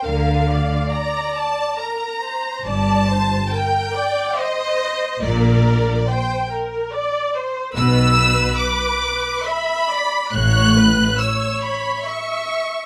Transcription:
<<
  \new Staff \with { instrumentName = "Violin section" } { \time 3/4 \key bes \major \tempo 4 = 70 f''4 bes''8 a''8 bes''4 | a''4 g''4 ees''4 | d''4 g''8 r4. | \key b \minor e'''4 d'''4 b''4 |
fis'''4 e'''8 b''8 cis'''4 | }
  \new Staff \with { instrumentName = "Violin section" } { \time 3/4 \key bes \major f''4 bes''8 a''8 bes''4 | a''4 g''4 ees''4 | d''4 g''8 r4. | \key b \minor e'''4 d'''4 b''4 |
fis'''4 e'''8 b''8 cis'''4 | }
  \new Staff \with { instrumentName = "Viola section" } { \time 3/4 \key bes \major bes'8 d''4. bes'8 c''8 | d''8 c''8 bes'8 d''8 c''4 | bes'4 c''8 bes'8 d''8 c''8 | \key b \minor b'2 e''8 d''8 |
cis''8 b'8 cis''4 e''4 | }
  \new Staff \with { instrumentName = "Cello section" } { \clef bass \time 3/4 \key bes \major d4 r2 | g,4 r2 | bes,4 r2 | \key b \minor b,4 r2 |
a,4 r2 | }
  \new Staff \with { instrumentName = "Double bass section" } { \clef bass \time 3/4 \key bes \major d,4 r2 | g,,4 r2 | bes,,4 r2 | \key b \minor b,,4 r2 |
a,,4 r2 | }
>>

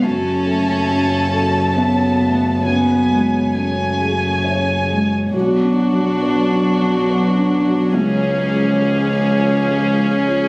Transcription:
<<
  \new Staff \with { instrumentName = "Violin" } { \time 3/4 \key fis \minor \tempo 4 = 69 a''2. | gis''4 gis''2 | fis'2. | gis'2. | }
  \new Staff \with { instrumentName = "String section" } { \time 3/4 \key fis \minor <cis' a' cis''>2. | <cis' gis' cis''>2. | <d' fis' fis''>2. | <cis' gis' eis''>2. | }
  \new Staff \with { instrumentName = "Viola" } { \time 3/4 \key fis \minor r2. | r2. | d'2. | cis'2. | }
  \new Staff \with { instrumentName = "Felt piano" } { \time 3/4 \key fis \minor fis,8 a8 cis'8 a'8 cis''8 a8 | fis,8 gis8 cis'8 gis'8 cis''8 gis8 | \tuplet 3/2 { b,,8 d'8 fis8 b'8 d'8 fis8 b'8 d'8 fis8 } | \tuplet 3/2 { cis,8 cis'8 eis8 gis'8 cis'8 eis8 gis'8 cis'8 eis8 } | }
  \new Staff \with { instrumentName = "Cello" } { \time 3/4 \key fis \minor cis'2 b4 | b4 a4. r8 | fis2.~ | fis4 eis2 | }
  \new Staff \with { instrumentName = "Double bass" } { \clef bass \time 3/4 \key fis \minor fis,,2.~ | fis,,2. | b,,2. | cis,2. | }
>>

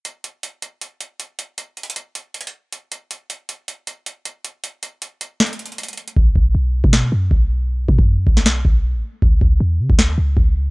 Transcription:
<<
  \new Staff \with { instrumentName = "808-style bass" } { \clef bass \time 4/4 \key b \mixolydian \tempo 4 = 157 r1 | r1 | r1 | r1 |
b,,8 b,,8 b,,8. b,8. fis,8 b,,4~ | b,,8 b,16 fis,8. b,,4 b,,8. a,,16 r8 | cis,8 cis,8 e,8 cis16 cis,8 dis,16 cis,8 cis,4 | }
  \new DrumStaff \with { instrumentName = "Drums" } \drummode { \time 4/4 hh8 hh8 hh8 hh8 hh8 hh8 hh8 hh8 | \tuplet 3/2 { hh16 r16 r16 hh16 hh16 hh16 } hh8 hh8 \tuplet 3/2 { hh16 hh16 hh16 r16 r16 r16 } hh8 hh8 | hh8 hh8 hh8 hh8 hh8 hh8 hh8 hh8 | hh8 hh8 hh8 hh8 \tuplet 3/2 { <hh sn>16 hh16 hh16 hh16 hh16 hh16 } hh32 hh32 hh32 hh32 hh16 hh16 |
bd8 bd8 r8. bd16 sn4 bd4 | r8 bd16 bd16 r8 bd16 sn16 sn8 bd8 r4 | bd8 bd8 r8. bd16 sn4 bd4 | }
>>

